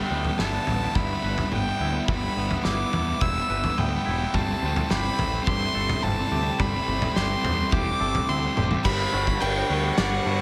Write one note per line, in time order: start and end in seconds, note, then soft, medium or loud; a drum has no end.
0.00 4.30 D3 medium
0.00 2.09 G3 medium
0.00 4.30 G3 medium
0.00 4.30 B3 medium
0.00 4.30 E4 medium
0.00 0.39 G5 medium
0.06 0.13 G3 soft
0.06 0.13 B3 medium
0.11 0.29 D2 medium
0.11 0.21 G3 medium
0.11 0.67 B3 medium
0.11 0.21 B3 medium
0.22 0.29 G3 soft
0.22 0.28 B3 medium
0.22 floor tom medium
0.29 0.35 G3 medium
0.29 0.36 B3 medium
0.35 0.57 G1 medium
0.35 0.43 G3 medium
0.35 0.45 B3 medium
0.35 0.97 A5 medium
0.35 snare medium
0.40 0.51 G3 medium
0.40 0.96 E4 medium
0.45 0.53 B3 medium
0.52 0.60 G3 medium
0.52 0.61 B3 medium
0.60 0.66 G3 medium
0.60 0.67 B3 medium
0.67 0.86 A1 medium
0.67 0.74 G3 soft
0.67 0.75 B3 medium
0.67 1.52 B3 medium
0.67 floor tom medium
0.76 0.83 G3 medium
0.76 0.82 B3 medium
0.83 0.90 G3 soft
0.83 0.91 B3 medium
0.91 0.98 G3 medium
0.91 0.99 B3 medium
0.95 1.14 G2 medium
0.95 1.06 G3 medium
0.95 1.81 E4 medium
0.95 1.54 B5 medium
0.95 kick loud
0.95 floor tom medium
1.00 1.06 B3 medium
1.06 1.14 G3 medium
1.06 1.14 B3 medium
1.14 1.21 G3 medium
1.14 1.21 B3 medium
1.21 1.42 G1 medium
1.21 1.29 G3 medium
1.21 1.29 B3 medium
1.21 2.65 B4 medium
1.29 1.36 G3 medium
1.29 1.37 B3 medium
1.37 1.44 G3 medium
1.37 1.45 B3 medium
1.37 floor tom medium
1.45 1.52 G3 medium
1.45 1.53 B3 medium
1.52 1.70 G1 medium
1.52 1.60 G3 medium
1.52 2.36 B3 medium
1.52 1.60 B3 medium
1.52 2.08 G5 medium
1.52 mid tom medium
1.60 1.68 G3 medium
1.60 1.68 B3 medium
1.68 1.76 G3 medium
1.68 1.76 B3 medium
1.76 1.84 G3 soft
1.76 1.84 B3 medium
1.80 1.99 D2 medium
1.80 2.65 E4 medium
1.84 1.92 G3 medium
1.84 1.92 B3 medium
1.92 1.98 G3 soft
1.92 1.99 B3 medium
1.99 2.07 G3 medium
1.99 2.07 B3 medium
2.08 2.27 G1 medium
2.08 2.15 G3 medium
2.08 4.34 G3 medium
2.08 2.17 B3 medium
2.08 2.61 B5 loud
2.08 kick loud
2.08 floor tom medium
2.16 2.23 G3 soft
2.16 2.24 B3 medium
2.24 2.31 G3 medium
2.24 2.31 B3 medium
2.31 2.38 G3 medium
2.31 2.39 B3 medium
2.37 2.55 G1 medium
2.37 2.46 G3 medium
2.37 2.93 B3 medium
2.37 2.47 B3 medium
2.47 2.54 G3 medium
2.47 2.55 B3 medium
2.47 floor tom medium
2.54 2.62 G3 medium
2.54 2.63 B3 medium
2.62 2.83 G1 medium
2.62 2.69 G3 medium
2.62 2.71 B3 medium
2.62 3.21 E4 medium
2.62 3.22 D6 medium
2.62 snare medium
2.70 2.78 G3 medium
2.70 2.79 B3 medium
2.79 2.86 G3 medium
2.79 2.86 B3 medium
2.86 2.94 G3 medium
2.86 2.94 B3 medium
2.93 3.12 E2 medium
2.93 3.01 G3 medium
2.93 3.77 B3 medium
2.93 3.02 B3 medium
2.93 floor tom medium
3.01 3.09 G3 medium
3.01 3.09 B3 medium
3.09 3.16 G3 medium
3.09 3.17 B3 medium
3.16 3.23 G3 medium
3.16 3.26 B3 medium
3.21 3.40 E1 medium
3.21 3.32 G3 medium
3.21 4.05 E4 medium
3.21 3.80 E6 loud
3.21 kick loud
3.21 floor tom medium
3.27 3.33 B3 medium
3.33 3.39 G3 medium
3.33 3.41 B3 medium
3.40 3.47 G3 medium
3.40 3.48 B3 medium
3.48 3.68 G1 medium
3.48 3.55 G3 medium
3.48 3.56 B3 medium
3.48 4.34 B4 medium
3.55 3.63 G3 medium
3.55 3.64 B3 medium
3.63 3.70 G3 medium
3.63 3.71 B3 medium
3.63 floor tom medium
3.71 3.78 G3 medium
3.71 3.78 B3 medium
3.78 3.97 D2 medium
3.78 3.86 G3 medium
3.78 4.34 B3 medium
3.78 3.87 B3 medium
3.78 4.35 G5 medium
3.78 mid tom medium
3.87 3.95 G3 medium
3.87 3.96 B3 medium
3.95 4.01 G3 medium
3.95 4.03 B3 medium
4.01 4.09 G3 soft
4.01 4.11 B3 medium
4.06 4.25 E1 medium
4.06 4.90 E4 medium
4.10 4.17 G3 medium
4.10 4.17 B3 medium
4.17 4.25 G3 soft
4.17 4.25 B3 medium
4.25 4.33 G3 medium
4.25 4.34 B3 medium
4.33 4.53 G1 medium
4.33 8.81 C3 medium
4.33 5.78 G3 medium
4.33 4.41 G3 medium
4.33 8.81 G3 medium
4.33 8.81 A3 medium
4.33 4.42 C4 medium
4.33 8.81 E4 medium
4.33 4.92 A5 loud
4.33 kick loud
4.33 floor tom medium
4.41 4.49 G3 medium
4.41 4.49 C4 medium
4.49 4.56 G3 medium
4.49 4.57 C4 medium
4.57 4.64 G3 medium
4.57 4.65 C4 medium
4.62 4.81 D2 medium
4.62 5.17 C4 medium
4.62 4.73 C4 medium
4.66 4.72 G3 medium
4.73 4.80 G3 medium
4.73 4.81 C4 medium
4.73 floor tom medium
4.81 4.87 G3 medium
4.81 4.88 C4 medium
4.88 5.09 G1 medium
4.88 4.96 G3 medium
4.88 4.96 C4 medium
4.88 5.47 G4 medium
4.88 5.46 B5 loud
4.88 snare medium
4.96 5.03 G3 medium
4.96 5.04 C4 medium
5.03 5.11 G3 medium
5.03 5.13 C4 medium
5.11 5.19 G3 medium
5.11 5.19 C4 medium
5.19 5.37 A1 medium
5.19 5.26 G3 medium
5.19 6.02 C4 medium
5.19 5.27 C4 medium
5.19 floor tom medium
5.26 5.34 G3 medium
5.26 5.34 C4 medium
5.35 5.41 G3 medium
5.35 5.43 C4 medium
5.42 5.49 G3 medium
5.42 5.50 C4 medium
5.47 5.66 G2 medium
5.47 5.57 G3 medium
5.47 5.58 C4 medium
5.47 6.30 G4 medium
5.47 6.05 C6 loud
5.47 kick loud
5.47 floor tom loud
5.57 5.65 G3 medium
5.57 5.65 C4 medium
5.66 5.72 G3 medium
5.66 5.74 C4 medium
5.73 5.94 G1 medium
5.73 5.81 G3 medium
5.73 5.82 C4 medium
5.73 7.16 A4 medium
5.81 5.88 G3 medium
5.81 5.89 C4 medium
5.88 5.96 G3 medium
5.88 5.97 C4 medium
5.88 floor tom medium
5.96 6.03 G3 medium
5.96 6.04 C4 medium
6.03 6.22 G1 medium
6.03 6.11 G3 medium
6.03 6.86 C4 medium
6.03 6.12 C4 medium
6.03 6.61 A5 loud
6.03 mid tom medium
6.13 6.19 G3 medium
6.13 6.20 C4 medium
6.19 6.27 G3 medium
6.19 6.27 C4 medium
6.27 6.35 G3 medium
6.27 6.35 C4 medium
6.32 6.50 D2 medium
6.32 6.42 G3 medium
6.32 7.15 G4 medium
6.36 6.42 C4 medium
6.42 6.49 G3 medium
6.42 6.50 C4 medium
6.49 6.57 G3 medium
6.49 6.60 C4 medium
6.59 6.78 G1 loud
6.59 6.66 G3 medium
6.59 8.00 G3 medium
6.59 6.68 C4 medium
6.59 7.18 B5 loud
6.59 kick loud
6.59 floor tom medium
6.66 6.74 G3 medium
6.66 6.76 C4 medium
6.75 6.83 G3 medium
6.75 6.82 C4 medium
6.83 6.89 G3 medium
6.83 6.90 C4 medium
6.87 7.06 G1 medium
6.87 6.98 G3 medium
6.87 7.43 C4 medium
6.87 6.98 C4 medium
6.98 7.06 G3 medium
6.98 7.06 C4 medium
6.98 floor tom medium
7.06 7.13 G3 medium
7.06 7.14 C4 medium
7.14 7.34 G1 medium
7.14 7.20 G3 medium
7.14 7.22 C4 medium
7.14 7.71 G4 medium
7.14 7.73 C6 loud
7.14 snare medium
7.20 7.28 G3 medium
7.20 7.29 C4 medium
7.30 7.37 G3 medium
7.30 7.36 C4 medium
7.37 7.44 G3 medium
7.37 7.45 C4 medium
7.44 7.62 E2 loud
7.44 7.52 G3 medium
7.44 8.28 C4 medium
7.44 7.53 C4 medium
7.44 floor tom medium
7.52 7.59 G3 medium
7.52 7.60 C4 medium
7.60 7.68 G3 medium
7.60 7.69 C4 medium
7.68 7.74 G3 medium
7.68 7.76 C4 medium
7.68 8.30 D6 loud
7.72 7.91 E1 medium
7.72 7.83 G3 medium
7.72 8.55 G4 medium
7.72 kick loud
7.72 floor tom medium
7.76 7.84 C4 medium
7.84 7.92 G3 medium
7.84 7.91 C4 medium
7.91 7.99 G3 medium
7.91 7.99 C4 medium
7.99 8.19 G1 medium
7.99 8.06 G3 medium
7.99 8.07 C4 medium
7.99 8.85 A4 medium
8.07 8.15 G3 medium
8.07 8.14 C4 medium
8.14 8.22 G3 medium
8.14 8.22 C4 medium
8.14 floor tom medium
8.23 8.30 G3 medium
8.23 8.31 C4 medium
8.29 8.47 D2 medium
8.29 8.37 G3 medium
8.29 8.85 C4 medium
8.29 8.39 C4 medium
8.29 8.57 C6 medium
8.38 8.45 G3 medium
8.38 8.46 C4 medium
8.45 8.53 G3 medium
8.45 8.54 C4 medium
8.54 8.75 E1 loud
8.54 8.61 G3 medium
8.54 8.62 C4 medium
8.54 8.85 G4 medium
8.54 mid tom medium
8.62 8.69 G3 medium
8.62 8.70 C4 medium
8.69 8.77 G3 medium
8.69 8.76 C4 medium
8.69 mid tom medium
8.77 8.85 G3 medium
8.77 8.84 C4 medium
8.84 9.05 G1 medium
8.84 9.12 G2 medium
8.84 10.41 D3 medium
8.84 9.12 D3 medium
8.84 10.41 G3 medium
8.84 10.26 G3 medium
8.84 9.13 G3 loud
8.84 10.41 B3 medium
8.84 10.41 D4 loud
8.84 9.42 B5 loud
8.84 kick loud
8.84 crash loud
8.84 crash medium
9.12 9.34 G1 medium
9.12 9.40 G2 medium
9.12 9.40 D3 medium
9.12 9.41 G3 loud
9.12 9.69 F#4 medium
9.27 kick medium
9.40 9.62 G1 medium
9.40 9.69 G2 loud
9.40 9.69 D3 loud
9.40 9.70 G3 loud
9.40 10.41 D4 medium
9.40 9.97 G5 loud
9.40 crash medium
9.69 9.90 D2 medium
9.69 9.96 G2 medium
9.69 9.97 D3 loud
9.69 9.97 G3 loud
9.69 10.26 F#4 medium
9.96 10.18 G1 medium
9.96 10.24 G2 medium
9.96 10.25 D3 loud
9.96 10.25 G3 loud
9.96 10.41 D5 medium
9.96 10.41 F#5 loud
9.96 snare loud
9.96 crash medium
10.25 10.41 G2 medium
10.25 10.41 D3 medium
10.25 10.41 G3 loud
10.25 10.41 F#4 medium